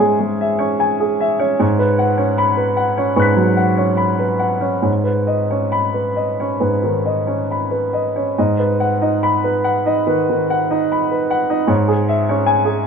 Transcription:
Already playing: G#2 C#4 C#5 E5 G#5
0.00 G#3 G#4
0.20 G#3
0.41 E5
0.59 C#4 C#5
0.80 G#5
1.00 G#4
1.21 E5
1.39 C#4 C#5
1.59 G#2 C#5
1.79 B4
1.99 F#5
2.17 C#4 C#5
2.38 B5
2.57 B4
2.77 F#5
2.97 C#4 C#5
3.16 G#2 B4 C#6 F#6
3.22 B6
3.36 F#3
3.57 F#5
3.77 C#4 C#5
3.97 B5
4.19 B4
4.39 F#5
4.61 C#4 C#5
4.82 G#2 C#5
5.04 B4
5.27 D#5
5.50 C#4 C#5
5.72 B5
5.94 B4
6.16 D#5
6.40 C#4 C#5
6.60 G#2 B4
6.84 D#3
7.06 D#5
7.27 C#4 C#5
7.51 B5
7.71 B4
7.93 D#5
8.16 C#4 C#5
8.38 G#2 D#5
8.59 B4
8.80 F#5
9.01 D#4 D#5
9.23 B5
9.44 B4
9.64 F#5
9.86 D#4 D#5
10.07 D#3 B4
10.29 D#3
10.50 F#5
10.70 D#4 D#5
10.92 B5
11.11 B4
11.31 F#5
11.50 D#4 D#5
11.67 G#2 C#5
11.88 G#4
12.08 E5
12.29 C#4 C#5
12.46 G#5
12.65 G#4

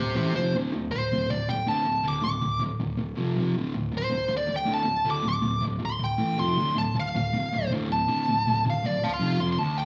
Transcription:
Already playing: D2 A2 G4
0.00 C5
0.15 A2 E3 A3 G4 C5
0.34 F2 C3 F3 C5
0.54 D2 A2 D3
0.72 D2 A2
0.91 D2 A2 C5
1.12 D2 A2
1.30 D2 A2 D5
1.48 D2 A2 G5
1.66 D2 A2 D3 A5
1.85 D2 A2
2.03 D2 A2 D3
2.08 D6
2.21 D2 A2 D6
2.41 D2 A2
2.60 D2 A2
2.80 D2 A2
2.97 D2 A2
3.15 F2 C3 F3
3.37 F2 C3 F3
3.56 D2 A2 D3
3.74 D2 A2
3.92 D2 A2
3.98 C5
4.10 D2 A2
4.28 D2 A2
4.37 D5
4.47 D2 A2
4.56 G5
4.65 D2 A2 D3
4.74 A5
4.83 D2 A2
5.05 D2 A2 D3
5.10 D6
5.23 D2 A2
5.29 D6
5.42 D2 A2
5.61 D2 A2
5.79 D2 A2
5.85 C6
5.99 D2 A2
6.04 G5
6.18 A2 E3 A3
6.38 F2 C3 F3 C6
6.56 D2 A2 D3
6.75 D2 A2 A5
6.95 D2 A2
7.00 F5
7.15 D2 A2
7.33 D2 A2
7.53 D2 A2
7.71 D2 A2 D3
7.90 D2 A2 A5
8.08 D2 A2 D3
8.28 D2 A2
8.47 D2 A2
8.65 D2 A2
8.70 F5
8.84 D2 A2 D5
9.03 D2 A2 F5 A5
9.14 C6
9.19 F2 C3 F3
9.39 F2 C3 F3
9.53 C6
9.58 D2 A5
9.77 G5

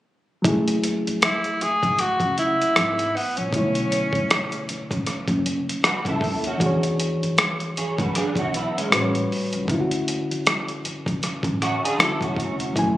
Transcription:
0.42 F#1 F#3 E4, kick, closed hi-hat
0.48 A3 G#4
0.68 closed hi-hat
0.84 closed hi-hat
1.07 muted upright bass stroke, closed hi-hat
1.22 E4, cross-stick, closed hi-hat
1.44 closed hi-hat
1.61 G#4, muted upright bass stroke, closed hi-hat
1.83 G#1, kick, closed hi-hat
1.99 F#4, muted upright bass stroke, cross-stick, closed hi-hat
2.20 C#2, kick, closed hi-hat
2.38 E4, closed hi-hat
2.62 closed hi-hat
2.76 G#1, cross-stick, closed hi-hat
2.99 closed hi-hat
3.16 B3, open hi-hat
3.37 A#1 C#4, closed hi-hat
3.50 B1 B2 A3, kick
3.54 D3 E4, closed hi-hat
3.58 C#5
3.75 closed hi-hat
3.92 closed hi-hat
4.13 muted upright bass stroke, kick, closed hi-hat
4.30 cross-stick, closed hi-hat
4.52 closed hi-hat
4.69 muted upright bass stroke, closed hi-hat
4.91 A1, kick, closed hi-hat
5.06 muted upright bass stroke, cross-stick, closed hi-hat
5.28 F#1, kick, closed hi-hat
5.46 closed hi-hat
5.69 closed hi-hat
5.84 F#4 B4, cross-stick, closed hi-hat
6.05 C#2 E4 A4, kick, closed hi-hat
6.21 D#2, kick, open hi-hat
6.44 C#4 F#4, closed hi-hat
6.57 E2 E3 D4, kick, closed hi-hat
6.62 F#4 G#4
6.66 C#5
6.83 closed hi-hat
7.00 closed hi-hat
7.23 muted upright bass stroke, closed hi-hat
7.38 cross-stick, closed hi-hat
7.60 closed hi-hat
7.77 G#4 C#5, muted upright bass stroke, closed hi-hat
7.98 F#2 F#4 B4, kick, closed hi-hat
8.15 D4 G#4, muted upright bass stroke, cross-stick, closed hi-hat
8.35 B1 F#4, kick, closed hi-hat
8.40 C#4
8.54 B3 E4, closed hi-hat
8.78 G#3 C#4, closed hi-hat
8.90 A1 A2 G3 F#4 B4, cross-stick, closed hi-hat
8.95 C5
9.01 C#5
9.15 closed hi-hat
9.32 open hi-hat
9.53 C#2, closed hi-hat
9.65 D2 D3 C#4, kick
9.69 E4, closed hi-hat
9.74 F4
9.81 F#4
9.91 closed hi-hat
10.08 closed hi-hat
10.31 muted upright bass stroke, closed hi-hat
10.47 cross-stick, closed hi-hat
10.68 closed hi-hat
10.85 muted upright bass stroke, closed hi-hat
11.06 C#2, kick, closed hi-hat
11.23 muted upright bass stroke, cross-stick, closed hi-hat
11.43 A1, kick, closed hi-hat
11.62 C#4 F#4, cross-stick, closed hi-hat
11.84 D4 G#4, closed hi-hat
11.98 D3 C#4 E4 A4, cross-stick, closed hi-hat
12.03 F#4
12.21 E2 C#4 F#4, kick, closed hi-hat
12.36 F1, kick, closed hi-hat
12.60 closed hi-hat
12.73 F#1 F#3 E4, kick, closed hi-hat
12.79 A3 G#5

